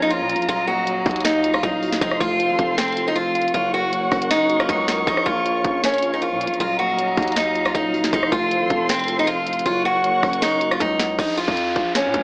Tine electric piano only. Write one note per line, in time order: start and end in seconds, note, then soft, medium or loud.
0.00 0.10 F3 loud
0.00 0.10 A#3 medium
0.00 0.49 C#4 medium
0.00 0.49 F4 medium
0.10 0.49 F3 medium
0.29 0.49 F5 medium
0.48 0.86 F#3 medium
0.68 1.63 A#3 medium
0.87 1.62 F#3 medium
1.06 2.01 D#4 medium
1.44 2.01 F4 medium
1.63 2.01 F#3 medium
1.82 2.02 F#4 loud
2.01 2.38 F3 loud
2.20 3.16 A3 medium
2.40 3.15 F3 medium
2.59 3.54 C4 medium
2.97 3.54 F4 medium
3.16 3.54 F3 medium
3.35 3.54 F5 medium
3.54 3.91 F#3 medium
3.73 4.69 A#3 medium
3.93 4.68 F#3 medium
4.11 5.07 C#4 medium
4.50 5.07 F#4 medium
4.69 5.07 F#3 medium
4.88 5.07 F#5 medium
5.07 5.44 F3 loud
5.26 6.22 A#3 medium
5.45 6.21 F3 medium
5.64 6.60 C#4 medium
6.03 6.60 F4 medium
6.22 6.60 F3 medium
6.41 6.60 F5 medium
6.60 6.97 F#3 loud
6.79 7.75 A#3 medium
6.98 7.74 F#3 medium
7.17 8.13 D#4 medium
7.56 8.13 F4 medium
7.75 8.13 F#3 medium
7.94 8.13 F#4 medium
8.13 8.50 F3 loud
8.32 9.28 A3 medium
8.51 9.26 F3 medium
8.70 9.66 C4 medium
9.08 9.66 F4 medium
9.27 9.66 F3 medium
9.47 9.66 F5 medium
9.66 10.03 F#3 loud
9.85 10.80 A#3 medium
10.04 10.79 F#3 medium
10.23 11.19 C#4 medium
10.61 11.19 F#4 medium
10.81 11.19 F#3 medium
11.00 11.19 F#5 medium